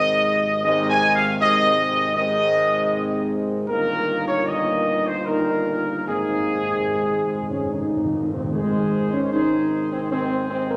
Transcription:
Already playing: tuba G#1, trombone section C3 D#3, french horn section G#3 C4, trumpet section D#5
0.64 trombone section C3 D#3, french horn section G#3 C4, trumpet section D#5
0.89 trumpet section G#5
1.15 trumpet section F5
1.40 trombone section C3 D#3, french horn section G#3 C4, trumpet section D#5
2.16 trombone section C3 D#3, french horn section G#3 C4, trumpet section D#5
3.69 tuba G1, trombone section A#2 D#3, french horn section A#3 D#4, trumpet section A#4
4.28 trumpet section C#5
4.46 trombone section A#2 D#3, french horn section A#3 D#4, trumpet section D#5
5.07 trumpet section C5
5.26 trombone section A#2 D#3, french horn section A#3 D#4, trumpet section A#4
6.06 tuba G#1, timpani G#2, trombone section C3 D#3, french horn section A#3 D#4, trumpet section G#4
6.14 timpani G#2
6.22 timpani G#2
6.30 timpani G#2
6.39 timpani G#2
6.47 timpani G#2
6.55 timpani G#2
6.63 timpani G#2
6.71 timpani G#2
6.79 timpani G#2
6.87 timpani G#2, french horn section G#3
6.95 timpani G#2
7.02 timpani G#2
7.10 timpani G#2
7.18 timpani G#2
7.26 timpani G#2
7.34 timpani G#2
7.42 timpani G#2
7.50 timpani G#2, french horn section C#4
7.58 timpani G#2
7.65 timpani G#2
7.72 timpani G#2, french horn section D#4
7.81 timpani G#2
7.89 timpani G#2
7.96 timpani G#2
8.04 timpani G#2
8.13 timpani G#2
8.20 timpani G#2
8.28 timpani G#2
8.34 timpani G#2, french horn section C4
8.44 timpani G#2
8.52 tuba G#1, timpani G#2, trombone section C3 D#3, french horn section G#3, trumpet section G#4 C5
9.13 french horn section C#4
9.32 trombone section C3 D#3, french horn section D#4, trumpet section G#4 C5
9.92 french horn section C4
10.11 trombone section C3 D#3, french horn section C4, trumpet section G#4 C5
10.50 french horn section C4
10.70 french horn section A#3

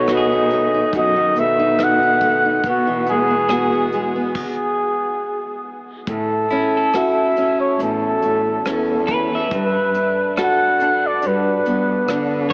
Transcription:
Already playing: cello B2, steel-string acoustic guitar D#3 A3 D#4, clean electric guitar D#4 F#4, flugelhorn C#5
0.07 steel-string acoustic guitar F#4, cross-stick, closed hi-hat
0.13 clean electric guitar G#4, flugelhorn D#5
0.32 steel-string acoustic guitar D#4
0.50 steel-string acoustic guitar A3, closed hi-hat
0.74 steel-string acoustic guitar D#4
0.93 cello F#2, steel-string acoustic guitar B2 F#4, kick, closed hi-hat
0.98 flugelhorn D#5
1.16 steel-string acoustic guitar D#3
1.36 cello B2, steel-string acoustic guitar A3, flugelhorn E5, closed hi-hat
1.59 steel-string acoustic guitar D#4
1.78 steel-string acoustic guitar F#4, cross-stick, closed hi-hat
1.83 flugelhorn F#5
2.03 steel-string acoustic guitar D#4
2.21 steel-string acoustic guitar A3, kick, closed hi-hat
2.45 steel-string acoustic guitar D#4
2.64 cello B2, steel-string acoustic guitar B2 B3, kick, closed hi-hat
2.69 flugelhorn F#4
2.87 steel-string acoustic guitar E3
3.06 steel-string acoustic guitar G#3, flugelhorn G#4, closed hi-hat
3.31 steel-string acoustic guitar B3
3.49 steel-string acoustic guitar F#4, clean electric guitar G#4, cross-stick, closed hi-hat
3.72 steel-string acoustic guitar B3
3.92 steel-string acoustic guitar G#3, closed hi-hat
4.16 steel-string acoustic guitar B3
4.35 flugelhorn G#4, kick, crash
6.07 cello A2, steel-string acoustic guitar A2, flugelhorn A4, kick, closed hi-hat
6.50 steel-string acoustic guitar C#4, clean electric guitar E4, closed hi-hat
6.77 clean electric guitar A4
6.93 steel-string acoustic guitar F#4, flugelhorn E5, cross-stick, closed hi-hat
7.36 steel-string acoustic guitar C#4, closed hi-hat
7.60 flugelhorn C#5
7.79 steel-string acoustic guitar E2, cello A2, closed hi-hat
7.83 flugelhorn A4
8.22 cello A2, steel-string acoustic guitar A3, closed hi-hat
8.65 cello E2, steel-string acoustic guitar C#4, cross-stick, closed hi-hat
9.07 steel-string acoustic guitar E3, clean electric guitar B4, kick, closed hi-hat
9.35 clean electric guitar E5
9.51 cello G2, steel-string acoustic guitar G2, flugelhorn B4, kick, closed hi-hat
9.94 steel-string acoustic guitar D4, closed hi-hat
10.37 steel-string acoustic guitar F#4, clean electric guitar A4, cross-stick, closed hi-hat
10.43 flugelhorn F#5
10.80 steel-string acoustic guitar D4, closed hi-hat
11.07 flugelhorn D5
11.22 cello G2, steel-string acoustic guitar G2, closed hi-hat
11.27 flugelhorn B4
11.65 cello G2, steel-string acoustic guitar B3, closed hi-hat
12.08 cello D3, steel-string acoustic guitar D4, cross-stick, closed hi-hat
12.50 clean electric guitar C#5

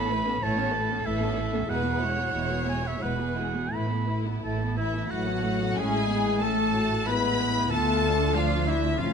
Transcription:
Already playing: double bass section A1, cello section A2, oboe B5
0.10 viola section A3 E4, violin section B4
0.26 viola section B3 C#4, violin section A4
0.40 double bass section A1, cello section A2, viola section A3 E4, violin section B4 C#5, oboe A5
0.57 viola section B3 C#4, violin section A4
0.74 viola section A3 E4, violin section A4 B4
0.90 viola section B3 C#4, violin section A4
1.04 double bass section A1, cello section A2, viola section A3 E4, violin section B4, oboe E5
1.22 viola section B3 C#4, violin section A4
1.37 viola section A3 E4, violin section B4
1.54 viola section B3 C#4, violin section A4
1.67 double bass section E1, cello section E2, viola section G#3 E4, violin section F#4 B4, oboe F#5
1.83 viola section B3 F#4, violin section G#4
2.00 viola section G#3 E4, violin section F#4 C#5
2.17 viola section B3 F#4, violin section G#4
2.33 double bass section E1, cello section E2, viola section G#3 E4, violin section F#4
2.50 viola section B3 F#4, violin section G#4
2.66 viola section G#3 E4, violin section F#4, oboe G#5
2.83 viola section B3 F#4, violin section G#4
2.87 oboe E5
3.00 double bass section E1, cello section E2, viola section G#3 E4, violin section F#4 B4, oboe F#5
3.18 viola section B3 F#4, violin section G#4
3.36 viola section G#3 E4, violin section F#4 G#4
3.55 viola section B3 F#4, violin section G#4
3.71 double bass section A1, cello section A2, viola section A3 E4, violin section E4 B4, oboe B5
3.89 viola section A3 B3, violin section A4
4.07 viola section A3 E4, violin section B4
4.25 viola section A3 B3, violin section A4
4.41 double bass section A1, cello section A2, viola section A3 E4, violin section B4, oboe A5
4.58 viola section A3 B3, violin section A4
4.77 french horn section E3, viola section A3 E4, oboe E4, violin section E4 B4 E5, flute section E5
4.92 viola section A3 B3, violin section A4
5.09 double bass section A1, cello section A2, french horn section F#3, viola section A3 E4, oboe F#4, violin section F#4 B4 F#5, flute section F#5
5.25 viola section A3 B3, violin section A4
5.43 viola section A3 E4, violin section B4
5.59 viola section A3 B3, violin section A4
5.75 double bass section A1, cello section A2, viola section C#4 E4, violin section G#4 G#5, oboe G#4, flute section G#5
5.79 french horn section G#3
6.09 viola section B3
6.41 viola section A3 C#4, french horn section A3, violin section A4 A5, oboe A4, flute section A5
6.75 viola section F#4
7.07 viola section G#3 E4, french horn section B3, oboe B4, violin section B4 B5, flute section B5
7.71 cello section D2, double bass section D2, french horn section A3, viola section B3 F4, oboe A4, violin section A4 A5, flute section A5
8.05 viola section D4
8.35 french horn section F3, viola section F3, oboe F4, violin section F4 F5, flute section F5
8.67 oboe E4, french horn section E4, violin section E4 E5, flute section E5
8.98 double bass section F1, cello section F2, french horn section F3, viola section A3 C#4, oboe F4, violin section F4 F5, flute section F5

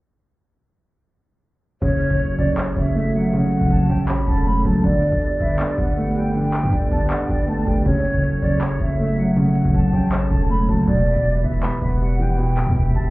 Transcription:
1.82 808-style bass F#1, grand piano C#3, analog synth pad F#3 F#4 A4 C#5, flute C#5, closed hi-hat
1.91 closed hi-hat
2.01 flute C#5, closed hi-hat
2.10 808-style bass F#1, closed hi-hat
2.20 closed hi-hat
2.38 808-style bass F#1, grand piano C#4, flute D5, closed hi-hat
2.48 closed hi-hat
2.57 grand piano C#5, clap, closed hi-hat
2.67 closed hi-hat
2.76 808-style bass F#1, grand piano C#4, flute E5, closed hi-hat
2.86 closed hi-hat
2.95 grand piano A3, flute E5, closed hi-hat
3.00 closed hi-hat
3.05 closed hi-hat
3.09 closed hi-hat
3.14 grand piano F#3, flute F#5, closed hi-hat
3.33 grand piano C#3, flute F#5, closed hi-hat
3.42 closed hi-hat
3.52 closed hi-hat
3.61 808-style bass F#1, closed hi-hat
3.71 808-style bass F#1, flute A5, closed hi-hat
3.89 808-style bass A1, grand piano C#4, flute G5, closed hi-hat
3.99 closed hi-hat
4.08 grand piano C#5, flute B5, clap, closed hi-hat
4.18 closed hi-hat
4.27 808-style bass E1, grand piano C#4, flute A5, closed hi-hat
4.37 closed hi-hat
4.46 grand piano A3, flute B5, closed hi-hat
4.51 closed hi-hat
4.56 closed hi-hat
4.60 closed hi-hat
4.65 808-style bass F#1, grand piano F#3, flute A5, closed hi-hat
4.84 808-style bass G1, grand piano D3, analog synth pad G3 G4 B4, flute D5, closed hi-hat
4.93 closed hi-hat
5.02 flute D5, closed hi-hat
5.12 808-style bass G1, closed hi-hat
5.22 closed hi-hat
5.40 808-style bass G1, grand piano B3, flute E5, closed hi-hat
5.50 closed hi-hat
5.59 grand piano D4, clap, closed hi-hat
5.69 closed hi-hat
5.78 808-style bass G1, grand piano B3, flute F#5, closed hi-hat
5.88 closed hi-hat
5.97 grand piano A3, flute F#5, closed hi-hat
6.02 closed hi-hat
6.06 closed hi-hat
6.11 closed hi-hat
6.16 grand piano G3, flute G5, closed hi-hat
6.35 grand piano D3, flute G5, closed hi-hat
6.44 closed hi-hat
6.54 clap, closed hi-hat
6.63 808-style bass G2, closed hi-hat
6.73 808-style bass G1, flute D5, closed hi-hat
6.91 808-style bass G1, grand piano B3, flute A5, closed hi-hat
7.01 closed hi-hat
7.10 grand piano D4, flute F#5, clap, closed hi-hat
7.20 closed hi-hat
7.29 808-style bass G1, grand piano B3, flute G5, closed hi-hat
7.39 closed hi-hat
7.48 grand piano A3, flute A5, closed hi-hat
7.67 808-style bass G1, grand piano G3, flute G5, closed hi-hat
7.85 808-style bass F#1, grand piano C#3, analog synth pad F#3 F#4 C#5, flute C#5, closed hi-hat
7.95 closed hi-hat
8.04 flute C#5, closed hi-hat
8.14 808-style bass F#1, closed hi-hat
8.23 closed hi-hat
8.42 808-style bass F#1, grand piano C#4, flute D5, closed hi-hat
8.52 closed hi-hat
8.61 grand piano C#5, clap, closed hi-hat
8.71 closed hi-hat
8.79 808-style bass F#1, grand piano C#4, flute E5, closed hi-hat
8.89 closed hi-hat
8.99 grand piano A3, flute E5, closed hi-hat
9.04 closed hi-hat
9.08 closed hi-hat
9.13 closed hi-hat
9.18 grand piano F#3, flute F#5, closed hi-hat
9.36 grand piano C#3, flute F#5, closed hi-hat
9.46 closed hi-hat
9.56 closed hi-hat
9.65 808-style bass F#1, closed hi-hat
9.74 808-style bass F#1, flute A5, closed hi-hat
9.93 808-style bass A1, grand piano C#4, flute G5, closed hi-hat
10.03 closed hi-hat
10.12 grand piano C#5, flute A5, clap, closed hi-hat
10.22 closed hi-hat
10.31 808-style bass E1, grand piano C#4, flute A5, closed hi-hat
10.40 closed hi-hat
10.50 grand piano A3, flute B5, closed hi-hat
10.55 closed hi-hat
10.59 closed hi-hat
10.64 closed hi-hat
10.69 808-style bass F#1, grand piano F#3, flute A5, closed hi-hat
10.87 808-style bass E1, grand piano B2, analog synth pad E3 E4 G4 B4, flute D5, closed hi-hat
10.97 closed hi-hat
11.06 flute E5, closed hi-hat
11.16 808-style bass E1, closed hi-hat
11.25 closed hi-hat
11.44 808-style bass E1, grand piano B3, flute E5, closed hi-hat
11.54 closed hi-hat
11.63 grand piano B4, clap, closed hi-hat
11.73 closed hi-hat
11.82 808-style bass E1, grand piano B3, flute F#5, closed hi-hat
11.91 closed hi-hat
12.01 grand piano G3, flute F#5, closed hi-hat
12.05 closed hi-hat
12.10 closed hi-hat
12.15 closed hi-hat
12.19 grand piano E3, flute G5, closed hi-hat
12.38 grand piano B2, flute G5, closed hi-hat
12.48 closed hi-hat
12.57 clap, closed hi-hat
12.67 808-style bass E2, closed hi-hat
12.76 808-style bass E1, flute E5, closed hi-hat
12.95 808-style bass E1, grand piano B3, flute A5, closed hi-hat
13.05 closed hi-hat

